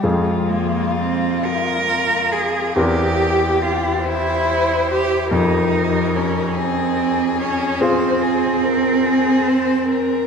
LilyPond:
<<
  \new Staff \with { instrumentName = "Violin" } { \time 12/8 \key f \minor \tempo 4. = 47 f'2. g'4. c''4. | bes'4. aes'4. c''8 aes'8 bes'8 aes'8 c''8 bes'8 | }
  \new Staff \with { instrumentName = "Grand piano" } { \time 12/8 \key f \minor <f, c' f' aes'>2. <e, c' g' bes'>2. | f,2. <c' f' aes'>2. | }
  \new Staff \with { instrumentName = "Cello" } { \time 12/8 \key f \minor aes8 bes8 c'8 bes'4 aes'8 g'4 f'8 e'4 g'8 | ees'4 des'8 c'4 des'8 c'2. | }
>>